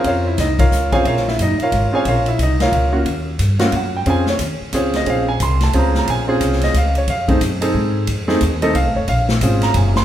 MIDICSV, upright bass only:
0, 0, Header, 1, 3, 480
1, 0, Start_track
1, 0, Key_signature, -5, "minor"
1, 0, Tempo, 334635
1, 63, Time_signature, 3, 2, 24, 8
1, 14413, End_track
2, 0, Start_track
2, 0, Title_t, "Upright bass"
2, 0, Program_c, 0, 32
2, 57, Note_on_c, 0, 41, 89
2, 526, Note_off_c, 0, 41, 0
2, 546, Note_on_c, 0, 36, 100
2, 1010, Note_off_c, 0, 36, 0
2, 1034, Note_on_c, 0, 37, 95
2, 1495, Note_off_c, 0, 37, 0
2, 1509, Note_on_c, 0, 34, 87
2, 1972, Note_off_c, 0, 34, 0
2, 1987, Note_on_c, 0, 30, 103
2, 2262, Note_off_c, 0, 30, 0
2, 2466, Note_on_c, 0, 32, 91
2, 2742, Note_off_c, 0, 32, 0
2, 2945, Note_on_c, 0, 34, 89
2, 3410, Note_off_c, 0, 34, 0
2, 3421, Note_on_c, 0, 36, 97
2, 3888, Note_off_c, 0, 36, 0
2, 3904, Note_on_c, 0, 37, 93
2, 4370, Note_off_c, 0, 37, 0
2, 4390, Note_on_c, 0, 39, 85
2, 4853, Note_off_c, 0, 39, 0
2, 4862, Note_on_c, 0, 43, 92
2, 5329, Note_off_c, 0, 43, 0
2, 5340, Note_on_c, 0, 42, 91
2, 5808, Note_off_c, 0, 42, 0
2, 5824, Note_on_c, 0, 41, 89
2, 6290, Note_off_c, 0, 41, 0
2, 6299, Note_on_c, 0, 39, 100
2, 6579, Note_off_c, 0, 39, 0
2, 6779, Note_on_c, 0, 37, 97
2, 7248, Note_off_c, 0, 37, 0
2, 7270, Note_on_c, 0, 34, 90
2, 7733, Note_off_c, 0, 34, 0
2, 7750, Note_on_c, 0, 36, 103
2, 8213, Note_off_c, 0, 36, 0
2, 8231, Note_on_c, 0, 37, 96
2, 8694, Note_off_c, 0, 37, 0
2, 8708, Note_on_c, 0, 34, 96
2, 9172, Note_off_c, 0, 34, 0
2, 9187, Note_on_c, 0, 36, 98
2, 9652, Note_off_c, 0, 36, 0
2, 9666, Note_on_c, 0, 37, 99
2, 10131, Note_off_c, 0, 37, 0
2, 10151, Note_on_c, 0, 41, 90
2, 10614, Note_off_c, 0, 41, 0
2, 10631, Note_on_c, 0, 42, 96
2, 11094, Note_off_c, 0, 42, 0
2, 11106, Note_on_c, 0, 44, 98
2, 11571, Note_off_c, 0, 44, 0
2, 11589, Note_on_c, 0, 41, 95
2, 12053, Note_off_c, 0, 41, 0
2, 12069, Note_on_c, 0, 39, 107
2, 12533, Note_off_c, 0, 39, 0
2, 12542, Note_on_c, 0, 36, 99
2, 12694, Note_off_c, 0, 36, 0
2, 12694, Note_on_c, 0, 33, 63
2, 12849, Note_off_c, 0, 33, 0
2, 12858, Note_on_c, 0, 29, 70
2, 13010, Note_off_c, 0, 29, 0
2, 13027, Note_on_c, 0, 34, 98
2, 13492, Note_off_c, 0, 34, 0
2, 13501, Note_on_c, 0, 32, 94
2, 13969, Note_off_c, 0, 32, 0
2, 13978, Note_on_c, 0, 30, 100
2, 14413, Note_off_c, 0, 30, 0
2, 14413, End_track
3, 0, Start_track
3, 0, Title_t, "Muted upright bass strokes"
3, 2281, Note_on_c, 9, 29, 43
3, 2424, Note_off_c, 9, 29, 0
3, 2758, Note_on_c, 9, 29, 42
3, 2901, Note_off_c, 9, 29, 0
3, 6613, Note_on_c, 9, 29, 47
3, 6756, Note_off_c, 9, 29, 0
3, 14413, End_track
0, 0, End_of_file